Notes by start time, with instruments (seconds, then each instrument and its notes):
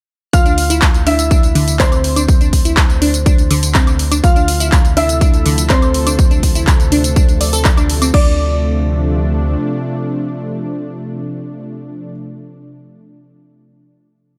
0.33 analog synth bass D2, grand piano F4 F5, synth pluck F6, kick, closed hi-hat, tambourine
0.46 synth arpeggio sound D4, closed hi-hat, tambourine
0.58 open hi-hat
0.70 synth arpeggio sound E4, closed hi-hat, tambourine
0.82 kick, clap, closed hi-hat, tambourine
0.94 closed hi-hat, tambourine
1.07 synth arpeggio sound D4, grand piano E4 E5, synth pluck E6, open hi-hat
1.19 closed hi-hat, tambourine
1.31 synth arpeggio sound D4, kick, closed hi-hat, tambourine
1.43 closed hi-hat, tambourine
1.55 synth arpeggio sound D3, open hi-hat
1.68 closed hi-hat, tambourine
1.79 synth arpeggio sound C4, grand piano C4 C5, synth pluck C6, kick, clap, closed hi-hat, tambourine
1.92 closed hi-hat, tambourine, high woodblock
2.04 open hi-hat
2.16 synth arpeggio sound D4, closed hi-hat, tambourine, high woodblock
2.28 kick, closed hi-hat, tambourine
2.41 synth arpeggio sound D4, closed hi-hat, tambourine
2.53 kick, open hi-hat
2.65 synth arpeggio sound E4, closed hi-hat, tambourine
2.77 kick, clap, closed hi-hat, tambourine
2.90 closed hi-hat, tambourine
3.02 synth arpeggio sound D4, open hi-hat
3.14 closed hi-hat, tambourine
3.26 synth arpeggio sound D4, kick, closed hi-hat, tambourine
3.38 closed hi-hat, tambourine
3.50 synth arpeggio sound D3, open hi-hat
3.63 closed hi-hat, tambourine
3.75 synth arpeggio sound C4, kick, clap, closed hi-hat, tambourine
3.87 closed hi-hat, tambourine, high woodblock
3.99 open hi-hat
4.12 synth arpeggio sound D4, closed hi-hat, tambourine, high woodblock
4.24 analog synth bass D2, analog synth pad C3 F3 A3 A4, grand piano F4 F5, synth pluck F6, kick, closed hi-hat, tambourine
4.36 synth arpeggio sound D4, closed hi-hat, tambourine
4.48 open hi-hat
4.60 synth arpeggio sound E4, closed hi-hat, tambourine
4.72 kick, clap, closed hi-hat, tambourine
4.85 closed hi-hat, tambourine
4.97 synth arpeggio sound D4, grand piano E4 E5, synth pluck E6, open hi-hat
5.09 closed hi-hat, tambourine
5.21 synth arpeggio sound D4, kick, closed hi-hat, tambourine
5.34 closed hi-hat, tambourine
5.46 synth arpeggio sound D3, open hi-hat
5.58 closed hi-hat, tambourine
5.70 synth arpeggio sound C4, grand piano C4 C5, synth pluck C6, kick, clap, closed hi-hat, tambourine
5.82 closed hi-hat, tambourine, high woodblock
5.94 open hi-hat
6.07 synth arpeggio sound D4, closed hi-hat, tambourine, high woodblock
6.19 kick, closed hi-hat, tambourine
6.31 synth arpeggio sound D4, closed hi-hat, tambourine
6.43 kick, open hi-hat
6.55 synth arpeggio sound E4, closed hi-hat, tambourine
6.67 kick, clap, closed hi-hat, tambourine
6.80 closed hi-hat, tambourine
6.92 synth arpeggio sound D4, open hi-hat
7.04 closed hi-hat, tambourine
7.16 synth arpeggio sound D4, kick, closed hi-hat, tambourine
7.29 closed hi-hat, tambourine
7.41 synth arpeggio sound D5, open hi-hat
7.53 synth arpeggio sound A4, closed hi-hat, tambourine
7.65 synth arpeggio sound D5, kick, clap, closed hi-hat, tambourine
7.77 synth arpeggio sound D4, closed hi-hat, tambourine, high woodblock
7.90 open hi-hat
8.02 synth arpeggio sound C4, closed hi-hat, tambourine, high woodblock
8.14 analog synth bass D2, analog synth pad C3 F3 A3 D4, synth arpeggio sound D4, grand piano D5, synth pluck D6, kick, crash